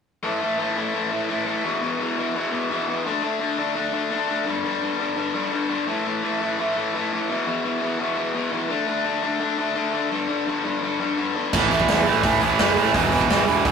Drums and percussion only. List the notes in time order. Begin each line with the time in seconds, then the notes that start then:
11.53 kick, crash
11.71 open hi-hat
11.80 kick
11.88 snare, open hi-hat
12.06 open hi-hat
12.23 kick, open hi-hat
12.41 open hi-hat
12.59 snare, open hi-hat
12.77 open hi-hat
12.94 kick, open hi-hat
13.12 open hi-hat
13.21 kick
13.30 snare, open hi-hat
13.47 open hi-hat
13.65 kick, open hi-hat